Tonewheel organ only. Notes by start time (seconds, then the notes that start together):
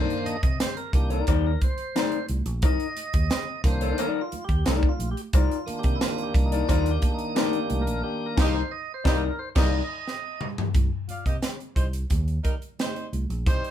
Already playing: D#3 A#3 D4 C5
0.26 D#5
0.43 D#5
0.60 C5
0.77 A#4
0.94 D#3 A#3 D4 G4
1.29 G4
1.47 A#4
1.64 C5
2.66 D#5
3.64 D#3 A#3 D4 C5
3.99 A#4
4.21 F4
4.45 G4
4.67 D#4
4.89 F4
5.11 G4
5.34 F4
5.66 D#3 A#3 D4
5.79 G4
5.95 E4
6.01 F4
6.23 G4
6.46 D#4
6.68 F4
6.91 G4
7.14 D#4
7.37 G4
7.82 A#4
8.03 D#3 A#3 D4 G4
8.26 A#4
8.49 C5
8.71 D#5
8.94 C5
9.17 A#4
9.39 C5
9.62 D#5
9.84 D#5